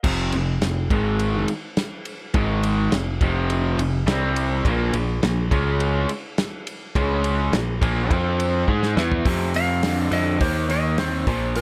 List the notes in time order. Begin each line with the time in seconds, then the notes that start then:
0.03 F1 F2 C3 F3, kick, crash
0.32 F1 F2 C3, ride
0.61 F1 F2 C3, snare, ride
0.90 G#1 G#2 D#3 G#3, kick, ride
1.19 ride
1.48 ride
1.77 snare, ride
2.05 ride
2.34 G#1 G#2 D#3 G#3, kick, ride
2.63 ride
2.91 F1 F2 C3, snare, ride
3.21 F1 F2 C3 F3, kick, ride
3.50 ride
3.77 F1 F2 C3, ride
4.07 C2 C3 G3 C4, snare, ride
4.36 ride
4.65 A#1 A#2 F3 A#3, kick, ride
4.93 A#1 A#2 F3, ride
5.23 A#1 A#2 F3, snare, ride
5.51 C#2 C#3 G#3 C#4, kick, ride
5.80 ride
6.09 ride
6.38 snare, ride
6.67 ride
6.95 C#2 C#3 G#3 C#4, kick, ride
7.24 ride
7.52 A#1 A#2 F3, snare, ride
7.82 A#1 A#2 F3 A#3, kick, ride
8.11 F2 F3 C4 F4, kick, ride
8.40 ride
8.68 G#2 G#3 D#4 G#4, kick
8.83 snare
8.96 E2 E3 B3 E4, snare
9.12 floor tom
9.25 F2 C3, kick, open hi-hat
9.54 F2 C3 F5, open hi-hat
9.83 F2 D3, snare, open hi-hat
10.11 F2 D3 D#5, open hi-hat
10.41 D#2 D#3 A#3 C5, kick, open hi-hat
10.69 D#3 A#3 D#5, open hi-hat
10.98 D#3 C4 C5, snare, open hi-hat
11.27 A#1 A#2 F3, kick, open hi-hat
11.56 A#2 F3 A#4, open hi-hat